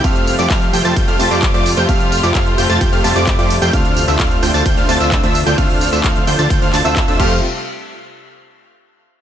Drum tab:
CC |----------------|----------------|----------------|--------------x-|
RD |x---x---x---x---|x---x---x---x---|x---x---x---x---|x---x---x---x---|
HH |xxoxxxoxxxoxxxo-|xxoxxxoxxxoxxxox|xxoxxxoxxxoxxxox|xooxxxoxxxoxxx--|
TB |x-xxx-xxx-xxx-xx|x-xxx-xxx-xx--xx|x-xx--xxx-xxx-xx|x-xxx-xxx-xx----|
CP |----x-------x---|----x-------x---|----x-------x---|----x-----x-x---|
BD |o---o---o---o---|o---o---o---o---|o---o---o---o---|o---o---o---o-o-|

CC |----------------|
RD |----------------|
HH |----------------|
TB |----------------|
CP |----------------|
BD |----------------|